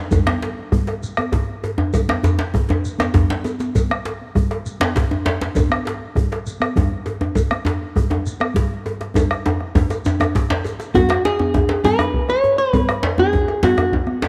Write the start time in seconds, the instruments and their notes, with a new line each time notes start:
0.11 bombo low, cowbell, djembe slap, low conga, djembe bass, shekere
0.26 bombo rim, djembe slap, high conga, djembe tone
0.42 cowbell, djembe slap
0.58 high conga
0.72 bombo rim, bombo low, djembe tone, high conga, djembe bass, low conga
0.87 bombo rim, cowbell, djembe slap
1.03 shekere
1.17 bombo rim, cowbell, djembe tone, high conga
1.32 bombo rim, bombo low, djembe slap, high conga, djembe bass, low conga
1.49 high conga
1.64 cowbell, djembe tone
1.78 bombo rim, djembe tone, high conga
1.93 bombo rim, bombo low, cowbell, low conga, djembe bass, shekere
2.08 bombo rim, djembe slap, high conga, djembe tone
2.23 cowbell, djembe slap, djembe bass, shekere
2.39 bombo rim, djembe slap
2.54 bombo rim, bombo low, high conga, djembe tone, low conga, djembe bass
2.69 bombo rim, cowbell, djembe slap, djembe tone
2.84 djembe slap, shekere
2.98 bombo rim, cowbell, djembe slap, high conga, djembe tone, shekere
3.14 bombo rim, bombo low, djembe slap, djembe bass, low conga
3.30 djembe slap, low conga
3.44 cowbell, djembe tone, high conga, shekere
3.60 djembe slap, high conga, shekere
3.75 bombo low, cowbell, djembe slap, djembe bass, low conga, shekere
3.90 bombo rim, high conga
4.05 cowbell, djembe slap
4.21 high conga
4.35 bombo rim, bombo low, high conga, djembe tone, low conga, djembe bass
4.51 bombo rim, cowbell, djembe slap
4.66 shekere
4.80 bombo rim, cowbell, djembe slap, high conga, djembe tone
4.96 bombo rim, bombo low, djembe slap, djembe bass
5.10 high conga, djembe tone
5.25 cowbell, djembe slap, djembe tone
5.40 bombo rim, djembe slap, high conga
5.55 bombo low, cowbell, djembe slap, djembe tone, low conga, djembe bass, shekere
5.70 bombo rim, high conga, djembe tone
5.85 cowbell, djembe slap
6.01 high conga
6.15 bombo rim, bombo low, high conga, djembe tone, low conga, djembe bass
6.32 bombo rim, cowbell, djembe slap
6.46 shekere
6.60 bombo rim, cowbell, high conga, djembe tone
6.76 bombo rim, bombo low, high conga, djembe tone, low conga, djembe bass
6.91 high conga
7.06 cowbell, djembe tone
7.21 bombo rim, djembe slap, high conga, djembe tone
7.35 bombo low, cowbell, djembe slap, low conga, djembe bass, shekere
7.51 bombo rim, djembe tone, high conga
7.65 cowbell, djembe slap, djembe tone
7.81 high conga
7.96 bombo rim, bombo low, high conga, djembe tone, low conga, djembe bass
8.10 bombo rim, cowbell, djembe slap, djembe tone
8.26 shekere
8.40 bombo rim, cowbell, high conga
8.54 bombo rim, bombo low, djembe slap, high conga, low conga, djembe bass
8.70 high conga
8.86 cowbell, djembe tone
9.01 bombo rim, djembe slap, high conga
9.15 bombo rim, bombo low, cowbell, djembe tone, low conga, djembe bass, shekere
9.31 bombo rim, djembe tone
9.46 bombo rim, cowbell, djembe slap, djembe tone
9.60 bombo rim, high conga
9.75 bombo low, djembe tone, low conga, djembe bass
9.90 bombo rim, cowbell, djembe slap, high conga, shekere
10.05 djembe tone, shekere
10.20 bombo rim, cowbell, high conga, djembe tone, shekere
10.35 bombo low, djembe slap, low conga, djembe bass, shekere
10.50 bombo rim, djembe slap, high conga
10.64 cowbell, djembe tone, shekere
10.80 djembe slap, shekere
10.94 hollow-body jazz guitar F#4, bombo rim, bombo low, cowbell, high conga, djembe tone, low conga, djembe bass
11.09 bombo rim, djembe slap, djembe tone
11.25 hollow-body jazz guitar G#4, djembe slap
11.39 bombo rim, high conga, djembe tone
11.54 bombo low, djembe tone, high conga
11.69 bombo rim, cowbell, djembe slap, high conga
11.84 hollow-body jazz guitar B4, djembe slap, high conga, low conga, djembe bass
11.99 bombo rim, cowbell, djembe slap, djembe tone
12.14 bombo low
12.29 hollow-body jazz guitar C#5, bombo rim, djembe slap, high conga
12.44 djembe slap, djembe tone
12.58 hollow-body jazz guitar B4
12.73 bombo rim, bombo low, cowbell, high conga, low conga, djembe bass
12.88 bombo rim, djembe slap, high conga, djembe tone
13.03 cowbell, djembe slap
13.18 hollow-body jazz guitar G#4, bombo rim, djembe tone, high conga
13.33 bombo low, djembe tone
13.48 bombo rim, cowbell, high conga
13.63 hollow-body jazz guitar F#4, djembe slap, high conga, low conga, djembe bass
13.78 bombo rim, cowbell, djembe slap, djembe tone
13.92 bombo low, djembe tone
14.07 bombo rim, djembe slap, high conga
14.22 cowbell, djembe slap, djembe tone